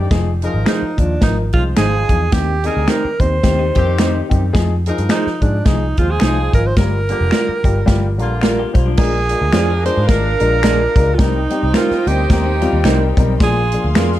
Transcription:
0.10 F1 F3 D#4 G#4, kick, snare, closed hi-hat
0.42 F3 D#4 G#4 A#4, closed hi-hat
0.54 G#1
0.66 F3 D#4 G#4 C5, finger snap, snare, closed hi-hat
0.82 muted picked electric bass stroke
0.98 D#2 F3 D4 D#4 F4, kick, closed hi-hat
1.21 G#1 F3 D#4 A#4, kick, snare, closed hi-hat
1.52 C2 F3 G#3 D#4 F4 G#4 C5, kick, closed hi-hat
1.76 G#1 F3 D#4 G#4 C5, finger snap, snare, closed hi-hat
2.09 E2 F3 D#4 G#4, kick, closed hi-hat
2.31 D#2 D#3 C4 G4, kick, snare, closed hi-hat
2.63 D#3 G3 C4 D#4 G#4 A#4, closed hi-hat
2.77 D2
2.87 D#3 C4 D#4 G4 A#4 C5, finger snap, snare, closed hi-hat
3.05 muted picked electric bass stroke
3.20 D#2 D#3 C4 G4 C5, kick, closed hi-hat
3.43 D#2 D#3 C4 G4, kick, snare, closed hi-hat
3.59 G3 D#4
3.75 F2 D#3 A#3 C4 G4, kick, closed hi-hat
3.87 G3 D#4
3.98 D#3 C4 D#4 G4 C5, finger snap, snare, closed hi-hat
4.29 F#2 D#3 C4 G4, kick, closed hi-hat
4.53 F2 F3 D#4 G#4, kick, snare, closed hi-hat
4.86 F3 D#4 G#4 A#4, closed hi-hat
4.98 G2, closed hi-hat
5.09 F3 D#4 G#4 C5, finger snap, snare, closed hi-hat
5.27 muted picked electric bass stroke, snare
5.42 G#2 F3 D4 D#4 G#4, kick, closed hi-hat
5.65 C2 F3 D#4 G#4, kick, snare, closed hi-hat
5.97 D#2 F3 G#3 D#4 F4 G#4 C5, kick, closed hi-hat
6.11 G#4
6.20 C2 F3 D#4 G#4 C5, finger snap, snare, closed hi-hat
6.53 G#1 F3 D#4 F4 A#4, kick, closed hi-hat
6.66 C5
6.76 G1 G3 F4 A#4, kick, snare, closed hi-hat
7.09 D3 G3 A#3 F4 G4 A#4, closed hi-hat
7.21 F1
7.31 G3 F4 A#4 D5, finger snap, snare, closed hi-hat
7.49 muted picked electric bass stroke
7.64 G1 G3 F4 G4, kick, closed hi-hat
7.86 G1 G3 F4 G4, kick, snare, closed hi-hat
8.18 A#1 D3 G3 A#3 F4 A#4, closed hi-hat
8.41 G3 F4 A#4 D5, finger snap, snare, closed hi-hat
8.59 A#3 G4
8.74 B1 G3 F4 C5, kick, closed hi-hat
8.86 F3 D4
8.97 A#1 G#3 D4 F4 G#4 A#4 F5, kick, snare, crash
9.29 G#3 D4 F4 A#4, closed hi-hat
9.42 D2
9.53 F2 G#3 D4 F4 G#4 C5 D5, finger snap, snare, closed hi-hat
9.85 G#3 D4 F4 G#4 C5, closed hi-hat
9.97 G#2
10.07 G#1 G#3 D4 F4 A#4, kick, snare, closed hi-hat
10.40 A#1 G#3 D4 F4 A#4, closed hi-hat
10.63 G#3 D4 F4 G#4 A#4 D5, finger snap, snare, closed hi-hat
10.96 C#2 G#3 D4 F4 A#4, kick, closed hi-hat
11.15 G3 C4 D#4 F4
11.19 C2 D#4 A#4 C5 G5, kick, snare, closed hi-hat
11.50 G3 C4 D#4 G4, closed hi-hat
11.63 C2
11.74 G3 C4 D#4 F4 A#4 C5, finger snap, snare, closed hi-hat
11.91 muted picked electric bass stroke, snare
12.06 D2 G3 C4 D#4 G4 A#4, closed hi-hat
12.29 D#2 G3 C4 D#4 G4 A#4, kick, snare, closed hi-hat
12.46 G3 D#4
12.61 G3 C4 D#4 F4, closed hi-hat
12.73 D#2 G3 D#4
12.84 C2 G3 C4 D#4 A#4 C5, finger snap, snare, closed hi-hat
13.17 B1 G3 C4 D#4 A#4, kick, closed hi-hat
13.40 A#1 F3 A#3 D4 G#4 F5 C6, kick, snare, closed hi-hat
13.72 F3 A#3 D4 G#4, closed hi-hat
13.84 D2
13.95 F2 F3 A#3 D4 G#4 A#4, finger snap, snare, closed hi-hat
14.12 snare

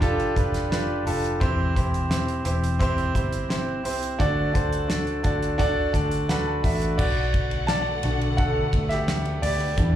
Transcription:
Already playing: E1 E3 F3 G4 B4 D5
0.00 D4 F4 G4 A4, kick, closed hi-hat
0.20 closed hi-hat
0.35 F1 D4 F4 G4 B4, kick, closed hi-hat
0.54 snare, closed hi-hat
0.70 D4 F4 G4 B4, snare, closed hi-hat
1.05 F1 D4 F4 G4 A4, open hi-hat
1.24 closed hi-hat
1.40 E1 E3 C4 E4 G4 C5, kick, closed hi-hat
1.75 C4 E4 G4 C5, kick, closed hi-hat
1.94 closed hi-hat
2.09 C4 E4 G4 C5, snare, closed hi-hat
2.28 closed hi-hat
2.44 E1 C4 E4 G4 C5, closed hi-hat
2.64 closed hi-hat
2.79 C4 E4 G4 C5, kick, closed hi-hat
2.98 closed hi-hat
3.14 G1 C4 E4 G4 C5, kick, closed hi-hat
3.32 closed hi-hat
3.49 C4 E4 G4 C5, snare, closed hi-hat
3.83 C2 C4 E4 G4 C5, open hi-hat
4.03 closed hi-hat
4.19 D2 D3 D4 F#4 A4 D5, kick, closed hi-hat
4.53 D4 F#4 A4 C5, kick, closed hi-hat
4.72 closed hi-hat
4.88 D4 F#4 A4 D5, snare, closed hi-hat
5.07 closed hi-hat
5.23 D2 D4 F#4 A4 D5, kick, closed hi-hat
5.42 closed hi-hat
5.58 D4 F#4 A4 D5, kick, closed hi-hat
5.93 D2 D4 F#4 A4 D5, kick, closed hi-hat
6.11 closed hi-hat
6.28 D4 F#4 A4 B4 F#5, snare, closed hi-hat
6.47 A5
6.63 A1 D4 F#4 A4 E5, kick, open hi-hat
6.81 closed hi-hat
6.98 B1 D3 A3 B3 F#4 D5 F#5, kick, crash
7.34 kick, ride
7.51 ride
7.67 D5 A5, snare, ride
8.03 B1 A3 D4 F#4, ride
8.21 ride
8.37 A4 F#5, kick, ride
8.73 D2, kick, ride
8.89 G4 E5, snare, ride
9.08 snare, ride
9.25 ride
9.42 D2 G4 D5, open hi-hat, ride
9.60 ride
9.77 E2 D3 E3 G3 D4 E4, kick, hi-hat pedal, ride

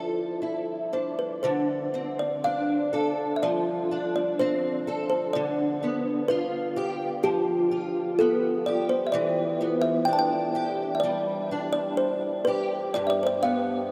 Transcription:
Already playing: D3 F3 D4 E4 A4 D5
0.42 E4
0.93 D4 C5
1.19 B4
1.43 D3 C5
1.94 C4
2.19 D5
2.44 D4 F5
2.93 A4
3.36 E5
3.42 F3 D5
3.91 D4
4.16 D5
4.39 C4 C5
4.87 A4
5.10 C5
5.33 D3 D5
5.83 B3
6.28 F4 B4
6.76 G4
7.23 F3 G4
7.71 F4
8.19 B3 A4
8.66 G4 D5
8.89 C5
9.07 E5
9.12 E3 D5
9.61 B3
9.82 E5
10.05 D4 G5
10.13 A5
10.19 G5
10.55 G4
10.95 E5
11.00 G3 D5
11.51 D4
11.73 D5
11.97 C5
12.45 G4 B4
12.94 G2 D5
13.07 D5 E5
13.23 C5 D5
13.43 B3 F5

